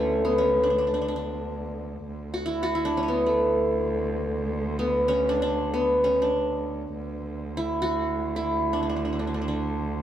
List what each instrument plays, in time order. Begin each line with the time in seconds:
Already playing: cello D2, qanun A3 B3 C#4 E4
0.25 qanun B3
0.38 qanun C#4
0.63 qanun D4
0.70 qanun D4
0.78 qanun D4
0.87 qanun D4
0.94 qanun D4
1.02 qanun D4
1.08 qanun D4
1.16 qanun D4
2.08 cello D2
2.34 qanun F#4
2.46 qanun E4
2.63 qanun F#4
2.75 qanun E4
2.85 qanun D4
2.97 qanun C#4
3.03 qanun C#4
3.08 qanun B3
3.26 qanun A3
4.79 qanun B3
5.08 qanun C#4
5.29 qanun D4
5.42 qanun D4
5.74 qanun B3
6.04 qanun C#4
6.22 qanun D4
6.95 cello D2
7.57 qanun E4
7.82 qanun F#4
8.36 qanun E4
8.73 qanun D4
8.83 qanun D4
8.89 qanun D4
8.96 qanun D4
9.05 qanun D4
9.13 qanun D4
9.19 qanun D4
9.27 qanun D4
9.34 qanun D4
9.42 qanun D4
9.48 qanun D4